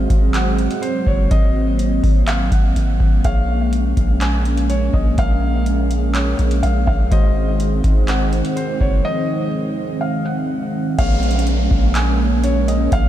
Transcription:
Already playing: F#3 G#3 C4 F#4 C5
0.10 G#1, kick, closed hi-hat
0.34 F#5, clap, closed hi-hat
0.59 closed hi-hat
0.71 closed hi-hat
0.82 C5, closed hi-hat
1.07 F#1 C#5, kick
1.31 G#1 A#3 D#5, kick, closed hi-hat
1.79 closed hi-hat
2.04 G#1, kick, open hi-hat
2.27 F5, clap, closed hi-hat
2.52 G#1 F#5, kick, closed hi-hat
2.76 G#1, closed hi-hat
3.00 G#1, kick
3.24 A#1 G#3 A#3 C#4 G#4 C#5 F5, kick, closed hi-hat
3.73 closed hi-hat
3.97 A#1, kick, closed hi-hat
4.21 G#5, clap, closed hi-hat
4.45 closed hi-hat
4.58 closed hi-hat
4.70 C#5, closed hi-hat
4.94 A#1 D#5, kick
5.18 A#1 A#4 F5, kick, closed hi-hat
5.66 closed hi-hat
5.91 closed hi-hat
6.15 C#5, clap, closed hi-hat
6.39 A#1, closed hi-hat
6.51 closed hi-hat
6.63 A#1 F5, closed hi-hat
6.87 A#1 F5, kick
7.11 G#1 D#3 G#3 C4 F#4 C5 D#5, kick, closed hi-hat
7.60 closed hi-hat
7.84 G#1, kick, closed hi-hat
8.08 F#5, clap, closed hi-hat
8.33 closed hi-hat
8.45 closed hi-hat
8.56 C5, closed hi-hat
8.81 F#1 C#5, kick
9.05 F3 D#5
10.01 F5
10.26 F#5
10.99 A#1 G#3 A#3 C#4 G#4 C#5 F5, kick, closed hi-hat, downlifter
11.23 closed hi-hat
11.31 closed hi-hat
11.39 closed hi-hat
11.47 closed hi-hat
11.71 A#1, kick
11.95 G#5, clap, closed hi-hat
12.44 C#5, closed hi-hat
12.68 D#5, closed hi-hat
12.92 A#1 F5, kick, closed hi-hat

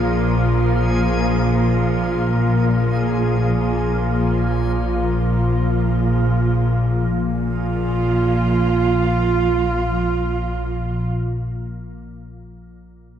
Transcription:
Already playing: A#1 A#2 F3 F4 G#4
7.13 A#1 A#2
7.32 F3
7.54 F4

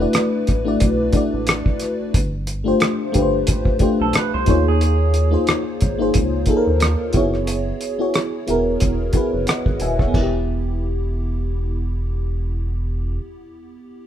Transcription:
Already playing: B4
0.00 A3 D4 E4 F#4 D5
0.13 cross-stick, closed hi-hat
0.47 A1, kick, cross-stick, closed hi-hat
0.65 A3 D4 E4 F#4 D5
0.80 B1, kick, closed hi-hat
1.13 A3 D4 E4 F#4, kick, closed hi-hat
1.17 D5
1.34 A1
1.47 cross-stick, closed hi-hat
1.66 kick
1.80 cross-stick, closed hi-hat
2.14 G1, kick, closed hi-hat
2.47 closed hi-hat
2.64 A3 D4 F4 G4 C5
2.80 cross-stick, closed hi-hat
3.12 G1 A3 D4 F4 G4 B4, kick, closed hi-hat
3.22 C5
3.47 A1, kick, closed hi-hat
3.65 kick
3.79 A3 D4 F4 G4 C5, kick, closed hi-hat
4.01 B1 A4
4.13 B4, cross-stick, closed hi-hat
4.34 C2 C5
4.46 D#2 A#3 D#4 F4 G#4 C#5, kick, closed hi-hat
4.68 G#4
4.81 closed hi-hat
5.14 closed hi-hat
5.31 A#3 D#4 F4 G#4 C5
5.47 cross-stick, closed hi-hat
5.81 G#1, kick, closed hi-hat
5.98 A#3 D#4 F4 G#4 C5
6.14 C#2, kick, closed hi-hat
6.46 A#3 D#4 F4 G#4, kick, closed hi-hat
6.50 A4
6.57 A#4
6.67 D#2
6.80 cross-stick, closed hi-hat
7.13 F#1 B3 E4 F#4 G#4, kick, closed hi-hat
7.17 C#5
7.34 cross-stick
7.47 closed hi-hat
7.81 closed hi-hat
7.99 B3 E4 F#4 G#4 C#5
8.14 cross-stick, closed hi-hat
8.47 E1 B3 E4 F#4 G#4 A#4, closed hi-hat
8.80 E1, kick, closed hi-hat
9.13 B3 E4 F#4 G#4, kick, closed hi-hat
9.17 B4
9.34 F#1
9.47 D#5 F#5, cross-stick, closed hi-hat
9.66 G#1, kick
9.80 D#1 E5 G#5, closed hi-hat
9.99 C#5 E5, kick, cross-stick
10.08 B3
10.14 E1 E4, kick, splash
10.22 G4

